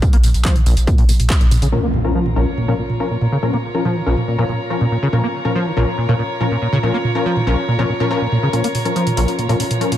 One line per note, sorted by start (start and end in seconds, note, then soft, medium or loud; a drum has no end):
0.02 0.11 A#2 medium
0.02 kick loud
0.02 closed hi-hat medium
0.02 tambourine soft
0.13 0.23 A#1 medium
0.13 0.17 A#3 loud
0.13 closed hi-hat medium
0.23 0.34 A#1 loud
0.23 mid tom medium
0.23 open hi-hat loud
0.23 tambourine medium
0.34 0.44 A#1 medium
0.34 closed hi-hat medium
0.34 tambourine soft
0.45 0.57 F3 loud
0.45 kick loud
0.45 clap loud
0.45 closed hi-hat medium
0.45 tambourine soft
0.55 0.65 A#1 medium
0.55 0.61 D#3 medium
0.55 closed hi-hat medium
0.55 mid tom medium
0.66 0.76 A#1 loud
0.66 0.75 A#1 loud
0.66 open hi-hat loud
0.66 tambourine medium
0.77 0.87 A#1 medium
0.77 closed hi-hat medium
0.77 tambourine soft
0.87 0.96 A#2 medium
0.87 kick loud
0.87 closed hi-hat medium
0.87 mid tom medium
0.87 tambourine soft
0.98 1.08 A#1 medium
0.98 1.04 A#2 loud
0.98 open hi-hat medium
1.08 1.19 A#1 loud
1.08 1.12 A#2 medium
1.08 open hi-hat loud
1.08 tambourine medium
1.19 1.30 A#1 medium
1.19 closed hi-hat medium
1.19 mid tom medium
1.19 tambourine soft
1.30 kick loud
1.30 clap loud
1.30 closed hi-hat medium
1.30 tambourine soft
1.41 1.51 A#1 medium
1.41 1.46 A#2 medium
1.41 closed hi-hat medium
1.51 1.61 A#1 loud
1.51 1.57 A#2 medium
1.51 mid tom medium
1.51 open hi-hat loud
1.51 tambourine medium
1.62 1.72 A#1 medium
1.62 1.68 C#3 loud
1.62 closed hi-hat medium
1.62 tambourine soft
1.72 1.81 A#2 medium
1.72 1.81 F3 medium
1.72 1.81 C#4 medium
1.72 9.98 F4 medium
1.72 1.81 A#4 medium
1.72 impact medium
1.83 1.87 A#3 medium
1.94 mid tom medium
2.04 2.13 F3 medium
2.04 2.13 C#4 medium
2.04 2.13 A#4 medium
2.04 9.98 A#5 medium
2.15 2.27 F3 loud
2.20 9.98 A#4 medium
2.26 2.32 D#3 medium
2.26 mid tom medium
2.36 2.45 A#1 loud
2.36 2.45 F3 medium
2.36 2.45 C#4 medium
2.36 2.45 A#4 loud
2.36 9.98 C#5 medium
2.58 2.66 A#2 medium
2.58 mid tom medium
2.68 2.74 A#2 loud
2.68 2.73 F3 medium
2.68 2.74 C#4 medium
2.68 2.73 A#4 medium
2.79 2.82 A#2 medium
2.90 mid tom medium
3.00 3.05 F3 medium
3.00 3.05 C#4 medium
3.00 3.05 A#4 medium
3.11 3.17 A#2 medium
3.21 3.27 A#2 medium
3.21 mid tom medium
3.32 3.38 C#3 loud
3.43 3.51 A#2 medium
3.43 3.51 F3 medium
3.43 3.51 C#4 medium
3.43 3.51 A#4 medium
3.53 3.57 A#3 loud
3.53 mid tom medium
3.75 3.83 F3 medium
3.75 3.83 C#4 medium
3.75 3.83 A#4 medium
3.85 3.97 F3 loud
3.85 mid tom medium
3.96 4.02 D#3 medium
4.06 4.15 A#1 loud
4.06 4.15 F3 medium
4.06 4.15 C#4 medium
4.06 4.15 A#4 loud
4.17 mid tom medium
4.28 4.37 A#2 medium
4.38 4.44 A#2 loud
4.38 4.44 F3 medium
4.38 4.44 C#4 medium
4.38 4.44 A#4 medium
4.49 4.53 A#2 medium
4.49 mid tom medium
4.70 4.76 F3 medium
4.70 4.76 C#4 medium
4.70 4.76 A#4 medium
4.81 4.87 A#2 medium
4.81 mid tom medium
4.92 4.97 A#2 medium
5.02 5.08 C#3 loud
5.13 5.22 A#2 medium
5.13 5.21 F3 medium
5.13 5.21 C#4 medium
5.13 5.21 A#4 medium
5.13 mid tom medium
5.24 5.27 A#3 loud
5.45 5.53 F3 medium
5.45 5.53 C#4 medium
5.45 5.53 A#4 medium
5.45 mid tom medium
5.55 5.68 F3 loud
5.66 5.72 D#3 medium
5.77 5.86 A#1 loud
5.77 5.85 F3 medium
5.77 5.85 C#4 medium
5.77 5.85 A#4 loud
5.77 mid tom medium
5.98 6.07 A#2 medium
6.09 6.14 A#2 loud
6.09 6.14 F3 medium
6.09 6.14 C#4 medium
6.09 6.14 A#4 loud
6.09 mid tom medium
6.19 6.23 A#2 medium
6.41 6.46 F3 medium
6.41 6.46 C#4 medium
6.41 6.46 A#4 loud
6.41 mid tom medium
6.51 6.57 A#2 medium
6.62 6.68 A#2 medium
6.73 6.78 C#3 loud
6.73 mid tom medium
6.83 6.92 A#2 medium
6.83 6.92 F3 medium
6.83 6.92 C#4 medium
6.83 6.92 A#4 loud
6.94 6.97 A#3 loud
7.04 mid tom medium
7.15 7.23 F3 medium
7.15 7.23 C#4 medium
7.15 7.23 A#4 medium
7.26 7.38 F3 loud
7.36 7.42 D#3 medium
7.36 mid tom medium
7.47 7.56 A#1 loud
7.47 7.55 F3 medium
7.47 7.55 C#4 medium
7.47 7.55 A#4 loud
7.68 7.77 A#2 medium
7.68 mid tom medium
7.79 7.85 A#2 loud
7.79 7.84 F3 medium
7.79 7.84 C#4 medium
7.79 7.84 A#4 medium
7.89 7.93 A#2 medium
8.00 8.05 F3 medium
8.00 8.05 C#4 medium
8.00 8.05 A#4 loud
8.00 mid tom medium
8.11 8.19 F3 loud
8.11 8.19 C#4 medium
8.11 8.19 A#4 loud
8.21 8.27 A#2 medium
8.32 8.38 A#2 medium
8.32 mid tom medium
8.43 8.49 C#3 loud
8.53 8.62 A#2 medium
8.53 8.62 F3 medium
8.53 8.62 C#4 medium
8.53 8.62 A#4 medium
8.53 closed hi-hat medium
8.53 riser medium
8.64 8.68 A#3 loud
8.64 closed hi-hat medium
8.75 mid tom medium
8.75 open hi-hat loud
8.85 8.94 F3 medium
8.85 8.94 C#4 medium
8.85 8.94 A#4 medium
8.85 closed hi-hat medium
8.96 9.08 F3 loud
8.96 closed hi-hat medium
9.07 9.12 D#3 medium
9.07 closed hi-hat medium
9.07 mid tom medium
9.17 9.26 A#1 loud
9.17 9.26 F3 medium
9.17 9.26 C#4 medium
9.17 9.26 A#4 loud
9.17 open hi-hat loud
9.28 closed hi-hat medium
9.38 9.47 A#2 medium
9.38 closed hi-hat medium
9.38 mid tom medium
9.49 9.55 A#2 loud
9.49 9.54 F3 medium
9.49 9.54 C#4 medium
9.49 9.54 A#4 loud
9.49 open hi-hat medium
9.60 9.63 A#2 medium
9.60 open hi-hat loud
9.71 closed hi-hat medium
9.71 mid tom medium
9.81 9.86 F3 medium
9.81 9.86 C#4 medium
9.81 9.86 A#4 loud
9.81 closed hi-hat medium
9.92 9.97 A#2 medium
9.92 closed hi-hat medium